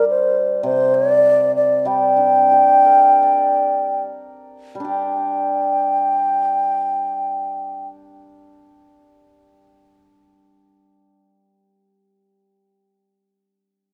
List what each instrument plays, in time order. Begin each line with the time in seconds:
Already playing: hammered dulcimer G3
0.10 xiao C5
0.63 hammered dulcimer C3, xiao C5
0.94 xiao D5
1.56 xiao D5
1.85 hammered dulcimer G3, xiao G5
2.17 hammered dulcimer D4
2.52 hammered dulcimer G4
2.85 hammered dulcimer A#4
3.23 hammered dulcimer D5
4.75 hammered dulcimer G3
4.80 hammered dulcimer D4
4.85 hammered dulcimer G4, xiao G5